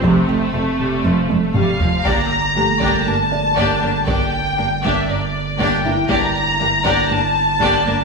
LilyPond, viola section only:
\new Staff \with { instrumentName = "Viola section" } { \time 4/4 \key g \dorian \tempo 4 = 119 << { c'4 a8 g8 f8 a8 g8 f8 | d'8 r8 d'8 d'8 d'8 r8 d'8 d'8 | d'8 r8 d'8 d'8 d'8 r8 d'8 d'8 | d'8 r8 d'8 d'8 d'8 r8 d'8 d'8 | } \\ { c8 a8 r2. | bes8 r8 bes8 bes8 bes8 r8 bes8 bes8 | bes8 r8 bes8 bes8 bes8 r8 bes8 bes8 | bes8 r8 bes8 bes8 bes8 r8 bes8 bes8 | } >> }